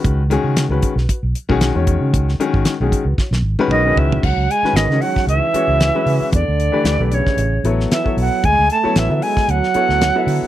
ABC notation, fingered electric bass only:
X:1
M:4/4
L:1/16
Q:"Swing 16ths" 1/4=114
K:C#m
V:1 name="Fingered electric bass" clef=bass
C,,3 C,2 C,, z B,,, z B,,, z B,,,2 E,,2 C, | C,,2 z G,,, z B,,, z C,, z B,,, G,,, z B,,,2 C,,2 | C,, C,, z2 G,,, C, z2 C,, z2 C,,2 z C, z | E,, =D,,2 z D,, B,,,2 z A,,,2 A,,,2 z2 B,,, z |
=D,, D,, z2 A,,, =D, z2 D,, z2 D,,2 z D, z |]